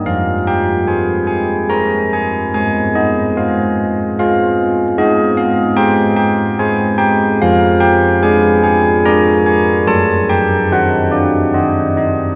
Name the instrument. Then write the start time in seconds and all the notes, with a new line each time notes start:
church bells
0.06 F3 F5
0.47 G5
0.87 G#4 C5 G#5
1.27 G#5
1.69 G#4 C5 A#5
2.13 G#5
2.54 G#3 G#5
2.95 D#5
3.37 G#4 C5 F5
4.19 G#4 C5 F5
4.98 G#3 D#5
5.37 F5
5.77 G#4 C5 G5
6.17 G5
6.59 G#4 C5 G#5
6.98 G5
7.42 F3 F5
7.80 G5
8.23 G#4 D5 G#5
8.63 G#5
9.05 G#4 D5 A#5
9.46 G#5
9.87 F#3 A5
10.30 G5
10.71 D#4 C5 F#5
11.11 D5
11.54 D#4 C5 D#5
11.97 D#5